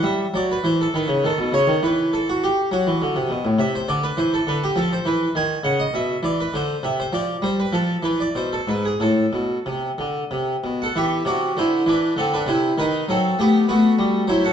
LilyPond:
<<
  \new Staff \with { instrumentName = "Harpsichord" } { \time 6/8 \key e \minor \tempo 4. = 67 e''8 d''16 b'16 c''16 a'16 b'8 a'8 cis''8 | b'8 a'16 fis'16 g'8 fis'4~ fis'16 r16 | \key a \minor e''16 c''16 d''16 b'16 c''16 a'16 b'16 g'16 a'16 c''16 b'8 | gis''8 fis''16 dis''16 e''8 d''16 b'16 c''8 e''16 c''16 |
d''8 c''16 b'16 a'8 b'16 d''16 c''16 a'16 b'16 gis'16 | a'2~ a'8 r16 <a' fis''>16 | \key e \minor <g' e''>8 <fis' d''>8 <e' c''>8 <d' b'>8 <c' a'>16 <d' b'>16 <e' c''>8 | <dis' b'>8 <c' a'>8 <b g'>8 <a fis'>4 <e' c''>16 <a' fis''>16 | }
  \new Staff \with { instrumentName = "Harpsichord" } { \clef bass \time 6/8 \key e \minor g8 fis8 e8 dis16 cis16 dis16 b,16 cis16 dis16 | e4. fis16 e16 d16 c16 b,16 a,16 | \key a \minor c8 d8 e8 d8 f8 e8 | dis8 cis8 b,8 e8 d8 c8 |
f8 g8 f8 e8 b,8 gis,8 | a,8 b,8 c8 d8 c8 b,8 | \key e \minor e8 c8 d8 e8 d8 c8 | dis8 fis8 a8 b8 g8 fis8 | }
>>